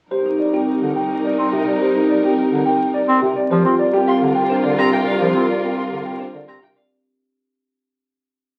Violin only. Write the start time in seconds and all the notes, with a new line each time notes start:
4.08 C6
4.78 A#5
4.93 G5
5.07 F5
5.77 C6
6.48 A#5
6.62 G5
6.76 F5